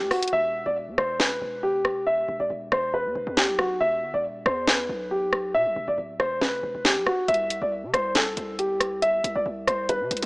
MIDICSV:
0, 0, Header, 1, 4, 480
1, 0, Start_track
1, 0, Key_signature, 1, "minor"
1, 0, Tempo, 434783
1, 361, Time_signature, 4, 2, 24, 8
1, 11326, End_track
2, 0, Start_track
2, 0, Title_t, "Grand piano"
2, 0, Program_c, 0, 0
2, 122, Note_on_c, 0, 66, 86
2, 328, Note_off_c, 0, 66, 0
2, 362, Note_on_c, 0, 76, 100
2, 707, Note_off_c, 0, 76, 0
2, 729, Note_on_c, 0, 74, 80
2, 825, Note_off_c, 0, 74, 0
2, 1081, Note_on_c, 0, 72, 80
2, 1287, Note_off_c, 0, 72, 0
2, 1321, Note_on_c, 0, 71, 82
2, 1772, Note_off_c, 0, 71, 0
2, 1800, Note_on_c, 0, 67, 88
2, 2252, Note_off_c, 0, 67, 0
2, 2281, Note_on_c, 0, 76, 90
2, 2626, Note_off_c, 0, 76, 0
2, 2647, Note_on_c, 0, 74, 70
2, 2745, Note_off_c, 0, 74, 0
2, 3002, Note_on_c, 0, 72, 85
2, 3208, Note_off_c, 0, 72, 0
2, 3243, Note_on_c, 0, 71, 82
2, 3694, Note_off_c, 0, 71, 0
2, 3722, Note_on_c, 0, 67, 81
2, 3928, Note_off_c, 0, 67, 0
2, 3963, Note_on_c, 0, 66, 80
2, 4168, Note_off_c, 0, 66, 0
2, 4201, Note_on_c, 0, 76, 98
2, 4546, Note_off_c, 0, 76, 0
2, 4569, Note_on_c, 0, 74, 77
2, 4666, Note_off_c, 0, 74, 0
2, 4922, Note_on_c, 0, 72, 83
2, 5128, Note_off_c, 0, 72, 0
2, 5161, Note_on_c, 0, 71, 72
2, 5612, Note_off_c, 0, 71, 0
2, 5642, Note_on_c, 0, 67, 78
2, 6093, Note_off_c, 0, 67, 0
2, 6122, Note_on_c, 0, 76, 97
2, 6467, Note_off_c, 0, 76, 0
2, 6490, Note_on_c, 0, 74, 78
2, 6586, Note_off_c, 0, 74, 0
2, 6841, Note_on_c, 0, 72, 85
2, 7047, Note_off_c, 0, 72, 0
2, 7081, Note_on_c, 0, 71, 89
2, 7532, Note_off_c, 0, 71, 0
2, 7562, Note_on_c, 0, 67, 76
2, 7768, Note_off_c, 0, 67, 0
2, 7801, Note_on_c, 0, 66, 85
2, 8007, Note_off_c, 0, 66, 0
2, 8041, Note_on_c, 0, 76, 102
2, 8386, Note_off_c, 0, 76, 0
2, 8408, Note_on_c, 0, 74, 75
2, 8505, Note_off_c, 0, 74, 0
2, 8762, Note_on_c, 0, 72, 89
2, 8968, Note_off_c, 0, 72, 0
2, 9001, Note_on_c, 0, 69, 83
2, 9452, Note_off_c, 0, 69, 0
2, 9481, Note_on_c, 0, 67, 80
2, 9933, Note_off_c, 0, 67, 0
2, 9961, Note_on_c, 0, 76, 93
2, 10306, Note_off_c, 0, 76, 0
2, 10328, Note_on_c, 0, 74, 81
2, 10425, Note_off_c, 0, 74, 0
2, 10681, Note_on_c, 0, 72, 84
2, 10887, Note_off_c, 0, 72, 0
2, 10921, Note_on_c, 0, 71, 86
2, 11326, Note_off_c, 0, 71, 0
2, 11326, End_track
3, 0, Start_track
3, 0, Title_t, "808-style bass"
3, 0, Program_c, 1, 38
3, 8, Note_on_c, 1, 38, 96
3, 115, Note_off_c, 1, 38, 0
3, 361, Note_on_c, 1, 28, 109
3, 714, Note_off_c, 1, 28, 0
3, 729, Note_on_c, 1, 28, 104
3, 969, Note_on_c, 1, 40, 100
3, 985, Note_off_c, 1, 28, 0
3, 1076, Note_off_c, 1, 40, 0
3, 1082, Note_on_c, 1, 28, 106
3, 1542, Note_off_c, 1, 28, 0
3, 1562, Note_on_c, 1, 28, 107
3, 2483, Note_off_c, 1, 28, 0
3, 2522, Note_on_c, 1, 28, 104
3, 2644, Note_off_c, 1, 28, 0
3, 2648, Note_on_c, 1, 28, 100
3, 2757, Note_off_c, 1, 28, 0
3, 2761, Note_on_c, 1, 28, 106
3, 2992, Note_off_c, 1, 28, 0
3, 3002, Note_on_c, 1, 28, 106
3, 3369, Note_on_c, 1, 40, 102
3, 3386, Note_off_c, 1, 28, 0
3, 3476, Note_off_c, 1, 40, 0
3, 3481, Note_on_c, 1, 28, 107
3, 3604, Note_off_c, 1, 28, 0
3, 3609, Note_on_c, 1, 40, 103
3, 3849, Note_on_c, 1, 35, 99
3, 3865, Note_off_c, 1, 40, 0
3, 4184, Note_off_c, 1, 35, 0
3, 4202, Note_on_c, 1, 28, 107
3, 4442, Note_on_c, 1, 31, 99
3, 4458, Note_off_c, 1, 28, 0
3, 4562, Note_off_c, 1, 31, 0
3, 4569, Note_on_c, 1, 28, 100
3, 4907, Note_off_c, 1, 28, 0
3, 4921, Note_on_c, 1, 40, 108
3, 5382, Note_off_c, 1, 40, 0
3, 5401, Note_on_c, 1, 35, 107
3, 6121, Note_on_c, 1, 47, 98
3, 6138, Note_off_c, 1, 35, 0
3, 6249, Note_on_c, 1, 35, 101
3, 6265, Note_off_c, 1, 47, 0
3, 6356, Note_off_c, 1, 35, 0
3, 6361, Note_on_c, 1, 28, 105
3, 6483, Note_off_c, 1, 28, 0
3, 6488, Note_on_c, 1, 28, 102
3, 6594, Note_off_c, 1, 28, 0
3, 6601, Note_on_c, 1, 26, 103
3, 6832, Note_off_c, 1, 26, 0
3, 6841, Note_on_c, 1, 28, 107
3, 7208, Note_on_c, 1, 30, 99
3, 7225, Note_off_c, 1, 28, 0
3, 7316, Note_off_c, 1, 30, 0
3, 7322, Note_on_c, 1, 28, 109
3, 7444, Note_off_c, 1, 28, 0
3, 7448, Note_on_c, 1, 28, 104
3, 7688, Note_on_c, 1, 35, 100
3, 7705, Note_off_c, 1, 28, 0
3, 7796, Note_off_c, 1, 35, 0
3, 8041, Note_on_c, 1, 36, 109
3, 8394, Note_off_c, 1, 36, 0
3, 8408, Note_on_c, 1, 36, 105
3, 8648, Note_on_c, 1, 48, 102
3, 8665, Note_off_c, 1, 36, 0
3, 8756, Note_off_c, 1, 48, 0
3, 8761, Note_on_c, 1, 36, 105
3, 9222, Note_off_c, 1, 36, 0
3, 9242, Note_on_c, 1, 36, 104
3, 10163, Note_off_c, 1, 36, 0
3, 10201, Note_on_c, 1, 36, 103
3, 10323, Note_off_c, 1, 36, 0
3, 10329, Note_on_c, 1, 36, 101
3, 10434, Note_off_c, 1, 36, 0
3, 10441, Note_on_c, 1, 36, 106
3, 10672, Note_off_c, 1, 36, 0
3, 10681, Note_on_c, 1, 36, 110
3, 11048, Note_on_c, 1, 48, 100
3, 11065, Note_off_c, 1, 36, 0
3, 11156, Note_off_c, 1, 48, 0
3, 11161, Note_on_c, 1, 36, 105
3, 11283, Note_off_c, 1, 36, 0
3, 11288, Note_on_c, 1, 48, 106
3, 11326, Note_off_c, 1, 48, 0
3, 11326, End_track
4, 0, Start_track
4, 0, Title_t, "Drums"
4, 120, Note_on_c, 9, 37, 93
4, 122, Note_on_c, 9, 46, 52
4, 231, Note_off_c, 9, 37, 0
4, 233, Note_off_c, 9, 46, 0
4, 249, Note_on_c, 9, 42, 83
4, 305, Note_off_c, 9, 42, 0
4, 305, Note_on_c, 9, 42, 74
4, 415, Note_off_c, 9, 42, 0
4, 1082, Note_on_c, 9, 37, 85
4, 1192, Note_off_c, 9, 37, 0
4, 1322, Note_on_c, 9, 38, 106
4, 1432, Note_off_c, 9, 38, 0
4, 2040, Note_on_c, 9, 37, 93
4, 2151, Note_off_c, 9, 37, 0
4, 3002, Note_on_c, 9, 37, 86
4, 3112, Note_off_c, 9, 37, 0
4, 3721, Note_on_c, 9, 38, 109
4, 3832, Note_off_c, 9, 38, 0
4, 3960, Note_on_c, 9, 37, 93
4, 4071, Note_off_c, 9, 37, 0
4, 4922, Note_on_c, 9, 37, 90
4, 5032, Note_off_c, 9, 37, 0
4, 5161, Note_on_c, 9, 38, 112
4, 5272, Note_off_c, 9, 38, 0
4, 5880, Note_on_c, 9, 37, 93
4, 5991, Note_off_c, 9, 37, 0
4, 6842, Note_on_c, 9, 37, 86
4, 6952, Note_off_c, 9, 37, 0
4, 7082, Note_on_c, 9, 38, 65
4, 7192, Note_off_c, 9, 38, 0
4, 7561, Note_on_c, 9, 38, 105
4, 7672, Note_off_c, 9, 38, 0
4, 7800, Note_on_c, 9, 37, 93
4, 7910, Note_off_c, 9, 37, 0
4, 8041, Note_on_c, 9, 42, 63
4, 8105, Note_off_c, 9, 42, 0
4, 8105, Note_on_c, 9, 42, 51
4, 8215, Note_off_c, 9, 42, 0
4, 8284, Note_on_c, 9, 42, 90
4, 8394, Note_off_c, 9, 42, 0
4, 8762, Note_on_c, 9, 37, 89
4, 8766, Note_on_c, 9, 42, 72
4, 8872, Note_off_c, 9, 37, 0
4, 8876, Note_off_c, 9, 42, 0
4, 8998, Note_on_c, 9, 42, 77
4, 9001, Note_on_c, 9, 38, 112
4, 9109, Note_off_c, 9, 42, 0
4, 9111, Note_off_c, 9, 38, 0
4, 9241, Note_on_c, 9, 42, 74
4, 9351, Note_off_c, 9, 42, 0
4, 9482, Note_on_c, 9, 42, 73
4, 9592, Note_off_c, 9, 42, 0
4, 9720, Note_on_c, 9, 37, 90
4, 9722, Note_on_c, 9, 42, 70
4, 9830, Note_off_c, 9, 37, 0
4, 9832, Note_off_c, 9, 42, 0
4, 9962, Note_on_c, 9, 42, 82
4, 10072, Note_off_c, 9, 42, 0
4, 10204, Note_on_c, 9, 42, 89
4, 10315, Note_off_c, 9, 42, 0
4, 10681, Note_on_c, 9, 37, 88
4, 10685, Note_on_c, 9, 42, 72
4, 10791, Note_off_c, 9, 37, 0
4, 10796, Note_off_c, 9, 42, 0
4, 10919, Note_on_c, 9, 42, 79
4, 11029, Note_off_c, 9, 42, 0
4, 11161, Note_on_c, 9, 42, 65
4, 11225, Note_off_c, 9, 42, 0
4, 11225, Note_on_c, 9, 42, 63
4, 11288, Note_off_c, 9, 42, 0
4, 11288, Note_on_c, 9, 42, 63
4, 11326, Note_off_c, 9, 42, 0
4, 11326, End_track
0, 0, End_of_file